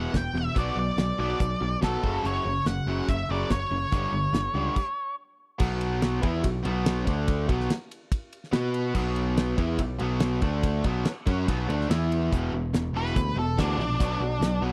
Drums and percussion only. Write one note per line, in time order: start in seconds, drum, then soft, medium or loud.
0.14 kick medium
0.14 snare medium
0.14 closed hi-hat medium
0.35 snare soft
0.56 kick medium
0.56 closed hi-hat medium
0.98 snare medium
0.98 closed hi-hat soft
1.40 kick loud
1.40 closed hi-hat medium
1.82 kick medium
1.82 snare medium
1.82 closed hi-hat medium
2.04 kick medium
2.25 closed hi-hat soft
2.66 snare medium
2.66 closed hi-hat soft
3.08 kick loud
3.08 closed hi-hat medium
3.50 kick medium
3.50 snare medium
3.50 closed hi-hat soft
3.92 kick medium
3.92 closed hi-hat soft
4.34 snare medium
4.34 closed hi-hat medium
4.76 kick medium
4.76 crash medium
5.60 kick loud
5.60 crash loud
5.81 ride medium
6.02 snare medium
6.02 ride medium
6.23 kick loud
6.23 ride medium
6.44 kick medium
6.44 ride loud
6.65 ride medium
6.86 snare loud
6.86 ride loud
7.07 kick loud
7.07 ride medium
7.28 kick loud
7.28 ride medium
7.49 kick loud
7.49 ride medium
7.60 snare soft
7.70 snare medium
7.70 ride medium
7.91 ride medium
8.12 kick loud
8.12 ride medium
8.33 ride medium
8.44 snare soft
8.53 snare loud
8.53 ride medium
8.74 ride medium
8.95 kick loud
8.95 crash medium
9.16 ride medium
9.37 snare medium
9.37 ride medium
9.58 kick loud
9.58 ride medium
9.79 kick medium
9.79 ride medium
9.99 ride medium
10.20 snare loud
10.20 ride medium
10.42 kick loud
10.42 ride medium
10.63 kick loud
10.63 ride medium
10.84 kick loud
10.84 ride medium
11.05 snare loud
11.05 ride medium
11.27 kick loud
11.27 ride medium
11.48 kick loud
11.48 ride loud
11.70 ride medium
11.81 snare soft
11.91 snare loud
11.91 ride loud
12.12 ride medium
12.32 kick medium
12.32 closed hi-hat medium
12.74 snare medium
12.74 closed hi-hat medium
13.06 snare soft
13.16 kick loud
13.16 closed hi-hat medium
13.58 kick medium
13.58 snare loud
13.58 closed hi-hat medium
13.80 snare soft
14.00 kick loud
14.00 closed hi-hat medium
14.42 snare medium
14.42 closed hi-hat medium